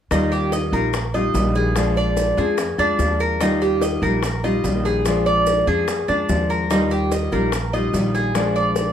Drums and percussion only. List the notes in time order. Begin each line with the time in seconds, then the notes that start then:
0.11 high bongo, maracas
0.31 high bongo, maracas
0.52 high bongo, maracas
0.73 maracas
0.93 high bongo, maracas
1.14 high bongo, maracas
1.34 high bongo, low bongo, maracas
1.55 high bongo, maracas
1.76 high bongo, maracas
1.96 high bongo, maracas
2.17 high bongo, maracas
2.38 maracas
2.58 high bongo, maracas
2.79 high bongo, maracas
2.99 high bongo, low bongo, maracas
3.20 high bongo, maracas
3.41 high bongo, maracas
3.61 high bongo, maracas
3.81 high bongo, maracas
4.03 maracas
4.23 high bongo, maracas
4.43 high bongo, maracas
4.64 high bongo, low bongo, maracas
4.85 high bongo, maracas
5.05 high bongo, maracas
5.26 high bongo, maracas
5.46 high bongo, maracas
5.67 maracas
5.88 high bongo, maracas
6.08 high bongo, maracas
6.29 high bongo, low bongo, maracas
6.50 high bongo, maracas
6.70 high bongo, maracas
6.91 high bongo, maracas
7.12 high bongo, maracas
7.32 maracas
7.52 high bongo, maracas
7.73 high bongo, maracas
7.94 high bongo, low bongo, maracas
8.15 high bongo, maracas
8.35 high bongo, maracas
8.55 high bongo, maracas
8.76 high bongo, maracas